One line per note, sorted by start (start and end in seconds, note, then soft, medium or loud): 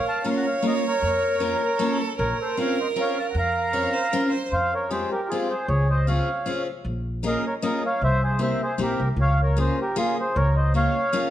0.00 0.20 A#4 medium
0.08 0.24 F5 medium
0.08 0.26 A5 loud
0.23 0.45 A#3 soft
0.23 0.45 C#4 medium
0.23 0.45 F4 medium
0.23 0.45 A#4 medium
0.23 1.44 C#5 medium
0.23 0.29 F5 medium
0.23 0.30 A#5 loud
0.29 0.34 C6 medium
0.37 0.45 F#5 medium
0.37 0.45 A#5 medium
0.47 0.63 C#5 medium
0.47 0.64 F5 medium
0.62 0.84 A#3 medium
0.62 0.84 C#4 soft
0.62 0.84 F4 medium
0.62 0.84 A#4 medium
0.62 0.74 A#4 medium
0.67 0.75 D#5 medium
0.87 1.98 A#4 medium
0.87 1.97 C#5 loud
1.02 1.52 F2 medium
1.40 1.61 A#3 medium
1.40 1.61 C#4 medium
1.40 1.61 F4 medium
1.40 1.61 A#4 medium
1.40 1.80 A#4 medium
1.79 2.00 A#3 medium
1.79 2.00 C#4 medium
1.79 2.00 F4 medium
1.79 2.17 A4 medium
1.79 2.00 A#4 medium
2.18 2.32 A#1 loud
2.18 3.75 A#4 medium
2.18 2.37 A#4 medium
2.18 2.39 C#5 loud
2.42 2.57 A4 medium
2.42 2.59 C5 medium
2.57 2.78 C4 medium
2.57 2.78 C#4 medium
2.57 2.78 F4 medium
2.57 2.77 A#4 medium
2.57 2.78 C#5 medium
2.57 2.79 F5 medium
2.80 2.87 C5 medium
2.80 2.88 D#5 medium
2.96 3.16 C4 medium
2.96 3.16 C#4 medium
2.96 3.16 F4 medium
2.96 3.16 A#4 medium
3.00 3.17 C#5 medium
3.00 3.19 F5 medium
3.19 3.27 F5 medium
3.19 3.27 A5 medium
3.30 3.36 F#5 medium
3.30 3.36 A#5 medium
3.34 3.85 F2 loud
3.34 4.31 A#5 loud
3.39 4.31 F5 medium
3.73 3.94 C4 soft
3.73 3.94 C#4 medium
3.73 3.94 F4 soft
3.73 3.94 A#4 medium
3.73 3.92 C#5 medium
3.93 4.10 C5 medium
4.11 4.34 C4 medium
4.11 4.34 C#4 medium
4.11 4.34 F4 medium
4.11 4.21 A#4 medium
4.11 4.33 A#4 medium
4.29 4.48 C5 medium
4.52 5.02 F2 medium
4.52 4.71 C5 medium
4.52 4.74 F5 loud
4.74 4.90 A#4 medium
4.74 4.92 C#5 loud
4.90 5.12 G#3 medium
4.90 5.12 C4 soft
4.90 5.11 F4 medium
4.90 5.12 G4 soft
4.90 5.10 G#4 medium
4.90 5.10 C5 medium
5.11 5.28 G4 medium
5.11 5.30 A#4 medium
5.28 5.51 G#3 medium
5.28 5.52 C4 medium
5.28 5.48 F4 medium
5.28 5.48 G#4 medium
5.33 5.52 F4 medium
5.33 5.52 G4 medium
5.49 5.67 G#4 medium
5.49 5.69 C5 medium
5.68 6.19 C#2 loud
5.68 5.87 G#4 medium
5.68 5.89 C#5 loud
5.90 6.07 C5 medium
5.90 6.08 D#5 medium
6.07 6.28 C4 medium
6.07 6.28 C#4 soft
6.07 6.28 F4 soft
6.07 6.28 G#4 medium
6.07 6.63 C#5 medium
6.07 6.63 F5 medium
6.46 6.67 C4 medium
6.46 6.67 C#4 medium
6.46 6.67 F4 medium
6.46 6.67 G#4 medium
6.85 7.35 A#1 medium
7.23 7.44 A#3 medium
7.23 7.44 C#4 medium
7.23 7.44 F4 medium
7.23 7.44 G#4 medium
7.23 7.44 A#4 medium
7.23 7.46 D#5 loud
7.47 7.54 A#4 medium
7.47 7.54 C#5 medium
7.62 7.83 A#3 medium
7.62 7.83 C#4 medium
7.62 7.83 F4 medium
7.62 7.83 G#4 medium
7.62 7.82 A#4 medium
7.62 7.83 D#5 medium
7.86 8.01 C#5 medium
7.86 8.03 F5 loud
8.01 8.52 C2 medium
8.01 8.22 C5 medium
8.01 8.23 E5 loud
8.23 8.39 G#4 medium
8.23 8.41 C5 medium
8.39 8.60 A#3 medium
8.39 8.60 C4 soft
8.39 8.60 E4 soft
8.39 8.60 G4 soft
8.39 8.60 C5 medium
8.39 8.62 E5 medium
8.63 8.79 G#4 medium
8.63 8.80 C5 loud
8.78 8.97 A#1 medium
8.78 9.00 A#3 medium
8.78 8.99 C4 medium
8.78 8.99 E4 soft
8.78 9.00 G4 medium
8.78 9.08 G4 medium
8.82 9.09 A#4 loud
9.00 9.16 C2 medium
9.16 9.68 C#2 medium
9.21 9.39 C#5 medium
9.21 9.41 F5 loud
9.42 9.58 A#4 medium
9.42 9.59 C#5 loud
9.57 9.78 A#3 medium
9.57 9.78 C#4 soft
9.57 9.78 F4 medium
9.57 9.78 G#4 soft
9.57 9.77 G#4 medium
9.57 9.80 C5 medium
9.81 9.96 G4 medium
9.81 9.97 A#4 medium
9.96 10.17 A#3 medium
9.96 10.17 C#4 soft
9.96 10.17 F4 medium
9.96 10.16 F4 medium
9.96 10.17 G#4 medium
10.19 10.35 G#4 medium
10.19 10.37 C5 loud
10.36 10.86 C#2 loud
10.36 10.55 A#4 medium
10.36 10.57 C#5 loud
10.56 10.73 C5 medium
10.56 10.73 D#5 medium
10.74 10.95 A#3 soft
10.74 10.95 C#4 soft
10.74 10.95 F4 soft
10.74 10.95 G#4 medium
10.74 11.30 C#5 medium
10.74 11.30 F5 loud
11.13 11.30 A#3 medium
11.13 11.30 C#4 medium
11.13 11.30 F4 medium
11.13 11.30 G#4 medium